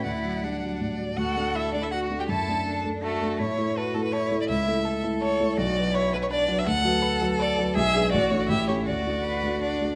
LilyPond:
<<
  \new Staff \with { instrumentName = "Violin" } { \time 3/4 \key d \major \tempo 4 = 163 d''2 d''4 | fis''4 e''8 d''16 e''16 fis''8. g''16 | a''4. r8 a'4 | cis''4 b'8 a'16 b'16 cis''8. d''16 |
e''4. r8 cis''4 | d''4 cis''8 b'16 cis''16 d''8. e''16 | fis''4. r8 d''4 | e''4 d''8 cis''16 d''16 e''8 cis''8 |
d''2 d''4 | }
  \new Staff \with { instrumentName = "Violin" } { \time 3/4 \key d \major fis''2~ fis''8 r8 | fis'4 e'8 d'16 e'16 fis'8. g'16 | a'4. r8 a4 | r4 a'4 a'4 |
r4 a'4 a'4 | r4 b'4 b'4 | r4 b'4 b'4 | gis'4 fis'4 g'4 |
fis'2~ fis'8 r8 | }
  \new Staff \with { instrumentName = "Cello" } { \time 3/4 \key d \major e'4 d'4. r8 | a'2 fis'4 | e'4 d'4 fis'4 | e'4 fis'4 e'4 |
e'4 a'2 | fis'4 e'4 d'4 | a'2. | gis'4 fis'4 e'4 |
fis'4 b'4 d'4 | }
  \new Staff \with { instrumentName = "Grand piano" } { \time 3/4 \key d \major d,8 fis8 g8 fis8 a,8 fis'8 | d,8 <a d' a'>4 <a d' a'>4 <a d' a'>8 | fis,8 <a d' a'>4 <a d' a'>4 <a d' a'>8 | a,8 <a e' a'>4 <a e' a'>4 <a e' a'>8 |
cis,8 <a e' a'>4 <a e' a'>4 <a e' a'>8 | b,,8 <fis fis' b'>4 <fis fis' b'>4 <fis fis' b'>8 | d,8 <fis fis' b'>4 <fis fis' b'>4 <fis fis' b'>8 | b,,8 <gis d' b'>8 a,,8 <a d' fis'>8 a,,8 <a cis' g'>8 |
d,8 <a d' fis'>4 <a d' fis'>4 <a d' fis'>8 | }
>>